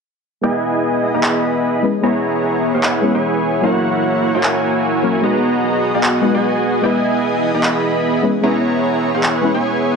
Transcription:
0.41 analog synth pad E3 B3 G#4 D#5, synth pluck G#3 B3 E4 D#5, supersaw synth B3 E4 G#4 D#5 G#5
0.45 synth pluck B4
1.14 supersaw synth B3 E4 G#4 D#5 B5
1.23 clap
1.82 synth pluck G#3 B3 C#4 E4 B4, analog synth pad B3 C#5
2.01 synth pluck G#3 B3 C#4 E4, supersaw synth B3 E4 G#4 C#5 A#5
2.05 synth pluck B4
2.74 supersaw synth B3 E4 G#4 C#5 F#5
2.83 clap
3.01 synth pluck G#3 B3 C#4 E4 B4
3.14 supersaw synth B3 E4 G#4 C#5 G#5
3.61 synth pluck F#3 A#3 C#4 E4 A#4, supersaw synth A#3 E4 F#4 C#5 F#5, analog synth pad A#3 F#4
4.34 supersaw synth A#3 E4 F#4 C#5 G#5
4.43 clap
5.02 synth pluck F#3 A#3 C#4 E4 A#4
5.21 analog synth pad F#3 B3 G#4 D#5, synth pluck G#3 B3 D#4 F#4 B4, supersaw synth B3 F#4 G#4 D#5 A#5
5.94 supersaw synth B3 F#4 G#4 D#5 F#5
6.03 clap
6.21 synth pluck G#3 B3 D#4 F#4 B4
6.34 supersaw synth B3 F#4 G#4 D#5 G#5
6.81 analog synth pad E3 D#5, synth pluck G#3 B3 E4 D#5, supersaw synth B3 E4 G#4 D#5 G#5
6.85 synth pluck B4
7.54 supersaw synth B3 E4 G#4 D#5 B5
7.63 clap
8.22 synth pluck G#3 B3 C#4 E4 B4, analog synth pad C#5
8.41 synth pluck G#3 B3 C#4 E4, supersaw synth B3 E4 G#4 C#5 A#5
8.45 synth pluck B4
9.14 supersaw synth B3 E4 G#4 C#5 F#5
9.23 clap
9.41 synth pluck G#3 B3 C#4 E4 B4
9.54 supersaw synth B3 E4 G#4 C#5 G#5

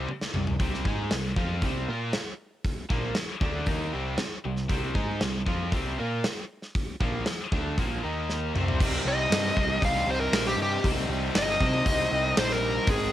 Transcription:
0.08 muted distorted electric guitar stroke, muted picked electric bass stroke, muted overdriven electric guitar stroke, high tom
0.21 snare
0.34 picked electric bass C2, overdriven electric guitar C3 G3, mid tom
0.47 floor tom
0.59 picked electric bass C2, overdriven electric guitar C3 G3 C4, kick, open hi-hat
0.74 snare
0.85 picked electric bass G#2, overdriven electric guitar G#3 D#4 G#4, kick
1.11 picked electric bass C2, overdriven electric guitar C3 G3, snare, open hi-hat
1.36 picked electric bass F2, overdriven electric guitar F3 C4 F4, kick
1.62 picked electric bass C2, overdriven electric guitar C3 G3 C4, kick, open hi-hat
1.88 picked electric bass A#2, overdriven electric guitar A#3 F4 A#4
2.13 snare, open hi-hat
2.65 kick, open hi-hat
2.90 picked electric bass A#1, overdriven electric guitar A#2 F3 A#3, kick
3.15 muted picked electric bass stroke, muted distorted electric guitar stroke, muted overdriven electric guitar stroke, snare, open hi-hat
3.41 picked electric bass D2, overdriven electric guitar D3 A3 D4, kick
3.66 picked electric bass D#2, overdriven electric guitar D#3 A#3 D#4, kick, open hi-hat
3.93 picked electric bass C2, overdriven electric guitar C3 G3 C4
4.18 muted distorted electric guitar stroke, muted overdriven electric guitar stroke, snare, open hi-hat
4.45 picked electric bass C2, overdriven electric guitar C3 G3
4.56 snare
4.69 picked electric bass C2, overdriven electric guitar C3 G3 C4, kick, open hi-hat
4.94 picked electric bass G#2, overdriven electric guitar G#3 D#4 G#4, kick
5.21 picked electric bass C2, overdriven electric guitar C3 G3, snare, open hi-hat
5.47 picked electric bass F2, overdriven electric guitar F3 C4 F4, kick
5.72 picked electric bass C2, overdriven electric guitar C3 G3 C4, kick, open hi-hat
5.98 picked electric bass A#2, overdriven electric guitar A#3 F4 A#4
6.24 snare, open hi-hat
6.62 snare
6.75 kick, open hi-hat
7.00 picked electric bass A#1, overdriven electric guitar A#2 F3 A#3, kick
7.26 muted overdriven electric guitar stroke, muted distorted electric guitar stroke, snare, open hi-hat
7.52 picked electric bass D2, overdriven electric guitar D3 A3 D4, kick
7.78 picked electric bass A#1, overdriven electric guitar A#2 F3 A#3, kick, open hi-hat
8.03 picked electric bass D#2, overdriven electric guitar D#3 A#3 D#4
8.30 snare
8.55 picked electric bass C2, overdriven electric guitar C3 G3 C4, mid tom
8.68 floor tom
8.80 picked electric bass C2, overdriven electric guitar C3 G3 C4 D#4, kick, crash
9.05 picked electric bass C2, overdriven electric guitar C3 G3 C4 D#4, lead electric guitar D#5
9.30 picked electric bass G2, overdriven electric guitar C3 G3 C4 D#4, snare, open hi-hat
9.56 picked electric bass C2, overdriven electric guitar C3 G3 C4 D#4, kick
9.81 picked electric bass C2, overdriven electric guitar C3 G3 C4 D#4, kick, open hi-hat
9.85 lead electric guitar F5
10.06 picked electric bass C2, overdriven electric guitar C3 G3 C4 D#4, lead electric guitar C5
10.20 lead electric guitar A#4
10.32 picked electric bass A#1, overdriven electric guitar C3 G3 C4 D#4, snare, open hi-hat
10.47 lead electric guitar G4, snare
10.56 picked electric bass G2, overdriven electric guitar C3 G3 C4 D#4
10.62 lead electric guitar G4
10.84 picked electric bass C2, overdriven electric guitar C3 G3 C4 D#4, kick, open hi-hat
11.09 picked electric bass C2, overdriven electric guitar C3 G3 C4 D#4
11.35 picked electric bass G1, overdriven electric guitar C3 G3 C4 D#4, lead electric guitar D#5, snare, open hi-hat
11.60 overdriven electric guitar C3 G3 C4 D#4, picked electric bass C3, kick
11.85 picked electric bass C2, overdriven electric guitar C3 G3 C4 D#4, kick, open hi-hat
12.11 picked electric bass C2, overdriven electric guitar C3 G3 C4 D#4
12.36 picked electric bass A#1, overdriven electric guitar C3 G3 C4 D#4, lead electric guitar C5, snare, open hi-hat
12.50 lead electric guitar A#4, snare
12.62 overdriven electric guitar C3 G3 C4 D#4
12.87 picked electric bass G#1, overdriven electric guitar G#2 D#3 G#3 C4 D#4, lead electric guitar G#4, kick, open hi-hat

